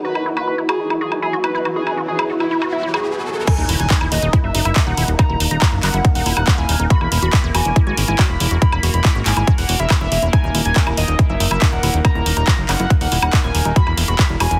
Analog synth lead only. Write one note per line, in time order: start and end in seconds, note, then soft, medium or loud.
0.05 0.24 B4 loud
0.37 0.56 B4 loud
0.69 0.88 G#4 medium
1.01 1.14 G#4 medium
1.22 1.35 G#4 medium
1.44 1.63 B4 loud
1.76 1.95 G#4 loud
2.08 2.27 G#4 medium
2.40 2.60 E4 loud
2.72 2.85 E4 medium
2.94 3.05 G#4 medium
3.47 3.67 G#5 loud
3.80 3.99 G#5 loud
4.12 4.31 D#5 loud
4.44 4.57 E5 medium
4.65 4.78 E5 medium
4.87 5.06 F#5 loud
5.19 5.38 A#5 loud
5.51 5.70 A#5 loud
5.83 6.02 F#5 loud
6.15 6.28 F#5 medium
6.37 6.50 F#5 loud
6.58 6.77 G#5 loud
6.90 7.10 B5 loud
7.22 7.42 B5 loud
7.55 7.74 G#5 medium
7.87 8.00 G#5 medium
8.08 8.21 G#5 loud
8.30 8.49 B5 loud
8.62 8.81 B5 loud
8.94 9.13 B5 loud
9.26 9.45 G#5 medium
9.58 9.71 F#5 medium
9.80 9.93 E5 medium
10.01 10.20 E5 loud
10.33 10.52 G#5 loud
10.65 10.85 G#5 loud
10.97 11.17 D#5 medium
11.30 11.42 E5 medium
11.51 11.64 E5 medium
11.72 11.92 F#5 loud
12.05 12.24 A#5 loud
12.37 12.56 A#5 loud
12.69 12.88 F#5 medium
13.01 13.14 F#5 medium
13.22 13.35 F#5 medium
13.44 13.63 G#5 loud
13.76 13.95 B5 loud
14.08 14.27 B5 loud
14.40 14.60 G#5 medium